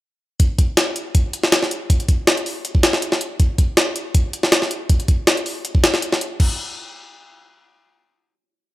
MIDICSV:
0, 0, Header, 1, 2, 480
1, 0, Start_track
1, 0, Tempo, 375000
1, 508, Time_signature, 4, 2, 24, 8
1, 11192, End_track
2, 0, Start_track
2, 0, Title_t, "Drums"
2, 509, Note_on_c, 9, 36, 115
2, 509, Note_on_c, 9, 42, 91
2, 637, Note_off_c, 9, 36, 0
2, 637, Note_off_c, 9, 42, 0
2, 749, Note_on_c, 9, 36, 98
2, 749, Note_on_c, 9, 42, 71
2, 877, Note_off_c, 9, 36, 0
2, 877, Note_off_c, 9, 42, 0
2, 988, Note_on_c, 9, 38, 117
2, 988, Note_on_c, 9, 42, 91
2, 1116, Note_off_c, 9, 38, 0
2, 1116, Note_off_c, 9, 42, 0
2, 1227, Note_on_c, 9, 42, 68
2, 1355, Note_off_c, 9, 42, 0
2, 1467, Note_on_c, 9, 42, 87
2, 1468, Note_on_c, 9, 36, 115
2, 1595, Note_off_c, 9, 42, 0
2, 1596, Note_off_c, 9, 36, 0
2, 1708, Note_on_c, 9, 42, 70
2, 1836, Note_off_c, 9, 42, 0
2, 1837, Note_on_c, 9, 38, 56
2, 1949, Note_off_c, 9, 38, 0
2, 1949, Note_on_c, 9, 38, 119
2, 1949, Note_on_c, 9, 42, 89
2, 2077, Note_off_c, 9, 38, 0
2, 2077, Note_off_c, 9, 42, 0
2, 2080, Note_on_c, 9, 38, 44
2, 2192, Note_on_c, 9, 42, 70
2, 2208, Note_off_c, 9, 38, 0
2, 2320, Note_off_c, 9, 42, 0
2, 2430, Note_on_c, 9, 36, 114
2, 2431, Note_on_c, 9, 42, 89
2, 2558, Note_off_c, 9, 36, 0
2, 2559, Note_off_c, 9, 42, 0
2, 2559, Note_on_c, 9, 42, 45
2, 2669, Note_off_c, 9, 42, 0
2, 2669, Note_on_c, 9, 36, 97
2, 2669, Note_on_c, 9, 42, 70
2, 2797, Note_off_c, 9, 36, 0
2, 2797, Note_off_c, 9, 42, 0
2, 2910, Note_on_c, 9, 38, 120
2, 2910, Note_on_c, 9, 42, 89
2, 3038, Note_off_c, 9, 38, 0
2, 3038, Note_off_c, 9, 42, 0
2, 3038, Note_on_c, 9, 42, 46
2, 3150, Note_on_c, 9, 46, 83
2, 3166, Note_off_c, 9, 42, 0
2, 3278, Note_off_c, 9, 46, 0
2, 3389, Note_on_c, 9, 42, 90
2, 3516, Note_on_c, 9, 36, 101
2, 3517, Note_off_c, 9, 42, 0
2, 3626, Note_on_c, 9, 38, 121
2, 3626, Note_on_c, 9, 42, 69
2, 3644, Note_off_c, 9, 36, 0
2, 3754, Note_off_c, 9, 38, 0
2, 3754, Note_off_c, 9, 42, 0
2, 3754, Note_on_c, 9, 38, 56
2, 3868, Note_on_c, 9, 42, 89
2, 3882, Note_off_c, 9, 38, 0
2, 3995, Note_on_c, 9, 38, 51
2, 3996, Note_off_c, 9, 42, 0
2, 4108, Note_on_c, 9, 42, 69
2, 4123, Note_off_c, 9, 38, 0
2, 4236, Note_off_c, 9, 42, 0
2, 4347, Note_on_c, 9, 42, 88
2, 4348, Note_on_c, 9, 36, 112
2, 4475, Note_off_c, 9, 42, 0
2, 4476, Note_off_c, 9, 36, 0
2, 4588, Note_on_c, 9, 36, 97
2, 4588, Note_on_c, 9, 42, 68
2, 4716, Note_off_c, 9, 36, 0
2, 4716, Note_off_c, 9, 42, 0
2, 4826, Note_on_c, 9, 38, 120
2, 4826, Note_on_c, 9, 42, 91
2, 4954, Note_off_c, 9, 38, 0
2, 4954, Note_off_c, 9, 42, 0
2, 5065, Note_on_c, 9, 42, 72
2, 5193, Note_off_c, 9, 42, 0
2, 5306, Note_on_c, 9, 42, 90
2, 5307, Note_on_c, 9, 36, 109
2, 5434, Note_off_c, 9, 42, 0
2, 5435, Note_off_c, 9, 36, 0
2, 5547, Note_on_c, 9, 42, 70
2, 5674, Note_on_c, 9, 38, 56
2, 5675, Note_off_c, 9, 42, 0
2, 5786, Note_off_c, 9, 38, 0
2, 5786, Note_on_c, 9, 38, 122
2, 5786, Note_on_c, 9, 42, 89
2, 5914, Note_off_c, 9, 38, 0
2, 5914, Note_off_c, 9, 42, 0
2, 5914, Note_on_c, 9, 38, 43
2, 6027, Note_on_c, 9, 42, 69
2, 6042, Note_off_c, 9, 38, 0
2, 6155, Note_off_c, 9, 42, 0
2, 6265, Note_on_c, 9, 42, 90
2, 6267, Note_on_c, 9, 36, 112
2, 6393, Note_off_c, 9, 42, 0
2, 6395, Note_off_c, 9, 36, 0
2, 6396, Note_on_c, 9, 42, 44
2, 6506, Note_off_c, 9, 42, 0
2, 6506, Note_on_c, 9, 42, 68
2, 6507, Note_on_c, 9, 36, 97
2, 6634, Note_off_c, 9, 42, 0
2, 6635, Note_off_c, 9, 36, 0
2, 6748, Note_on_c, 9, 38, 119
2, 6748, Note_on_c, 9, 42, 89
2, 6876, Note_off_c, 9, 38, 0
2, 6876, Note_off_c, 9, 42, 0
2, 6877, Note_on_c, 9, 42, 44
2, 6988, Note_on_c, 9, 46, 86
2, 7005, Note_off_c, 9, 42, 0
2, 7116, Note_off_c, 9, 46, 0
2, 7228, Note_on_c, 9, 42, 93
2, 7356, Note_off_c, 9, 42, 0
2, 7356, Note_on_c, 9, 36, 100
2, 7470, Note_on_c, 9, 38, 118
2, 7470, Note_on_c, 9, 42, 70
2, 7484, Note_off_c, 9, 36, 0
2, 7598, Note_off_c, 9, 38, 0
2, 7598, Note_off_c, 9, 42, 0
2, 7599, Note_on_c, 9, 38, 57
2, 7710, Note_on_c, 9, 42, 90
2, 7727, Note_off_c, 9, 38, 0
2, 7838, Note_off_c, 9, 42, 0
2, 7840, Note_on_c, 9, 38, 53
2, 7952, Note_on_c, 9, 42, 68
2, 7968, Note_off_c, 9, 38, 0
2, 8080, Note_off_c, 9, 42, 0
2, 8190, Note_on_c, 9, 36, 112
2, 8191, Note_on_c, 9, 49, 89
2, 8318, Note_off_c, 9, 36, 0
2, 8319, Note_off_c, 9, 49, 0
2, 11192, End_track
0, 0, End_of_file